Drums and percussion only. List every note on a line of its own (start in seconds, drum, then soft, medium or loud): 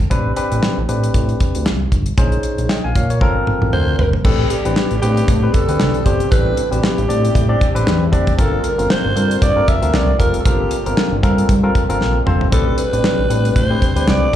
0.00 kick medium
0.11 kick loud
0.11 closed hi-hat loud
0.36 closed hi-hat medium
0.52 closed hi-hat medium
0.63 snare loud
0.63 clap medium
0.89 closed hi-hat medium
1.04 closed hi-hat medium
1.14 kick loud
1.14 closed hi-hat medium
1.29 closed hi-hat soft
1.40 kick medium
1.40 closed hi-hat medium
1.55 closed hi-hat medium
1.66 snare loud
1.66 clap medium
1.92 kick medium
1.92 closed hi-hat medium
2.06 closed hi-hat soft
2.18 kick loud
2.18 closed hi-hat loud
2.32 closed hi-hat soft
2.43 closed hi-hat medium
2.58 closed hi-hat medium
2.69 snare loud
2.69 clap medium
2.96 kick loud
2.96 closed hi-hat medium
3.10 closed hi-hat medium
3.21 kick loud
3.21 high tom soft
3.47 mid tom medium
3.62 mid tom medium
3.73 mid tom medium
3.99 floor tom loud
4.13 floor tom medium
4.25 kick loud
4.25 crash loud
4.50 closed hi-hat medium
4.65 closed hi-hat soft
4.76 snare medium
4.76 clap medium
4.91 closed hi-hat soft
5.03 closed hi-hat medium
5.17 closed hi-hat medium
5.28 kick loud
5.28 closed hi-hat loud
5.54 kick loud
5.54 closed hi-hat medium
5.69 closed hi-hat medium
5.80 snare loud
5.80 clap medium
5.94 closed hi-hat soft
6.06 kick medium
6.06 closed hi-hat medium
6.20 closed hi-hat soft
6.32 kick loud
6.32 closed hi-hat loud
6.57 closed hi-hat medium
6.73 closed hi-hat soft
6.84 snare loud
6.84 clap medium
6.98 closed hi-hat soft
7.10 closed hi-hat medium
7.25 closed hi-hat soft
7.35 kick loud
7.35 closed hi-hat loud
7.61 kick medium
7.61 closed hi-hat medium
7.76 closed hi-hat medium
7.87 snare loud
7.87 clap medium
8.13 kick medium
8.13 closed hi-hat medium
8.27 kick medium
8.27 closed hi-hat soft
8.39 kick loud
8.39 closed hi-hat loud
8.64 closed hi-hat medium
8.79 closed hi-hat medium
8.90 snare loud
8.90 clap medium
9.17 closed hi-hat medium
9.31 closed hi-hat medium
9.42 kick loud
9.42 closed hi-hat loud
9.68 kick loud
9.68 closed hi-hat medium
9.82 closed hi-hat medium
9.94 snare loud
9.94 clap medium
10.20 kick medium
10.20 closed hi-hat medium
10.34 closed hi-hat medium
10.45 kick loud
10.45 closed hi-hat loud
10.71 closed hi-hat medium
10.86 closed hi-hat soft
10.97 snare loud
10.97 clap medium
11.23 kick loud
11.23 closed hi-hat medium
11.38 closed hi-hat medium
11.49 kick loud
11.49 closed hi-hat medium
11.75 kick loud
11.75 closed hi-hat medium
11.90 closed hi-hat medium
12.01 snare medium
12.27 mid tom loud
12.41 floor tom medium
12.52 kick loud
12.52 closed hi-hat loud
12.78 closed hi-hat medium
12.93 closed hi-hat medium
13.04 snare loud
13.04 clap medium
13.30 closed hi-hat medium
13.45 closed hi-hat medium
13.56 kick loud
13.56 closed hi-hat loud
13.82 kick medium
13.82 closed hi-hat medium
13.97 closed hi-hat medium
14.08 snare loud
14.08 clap medium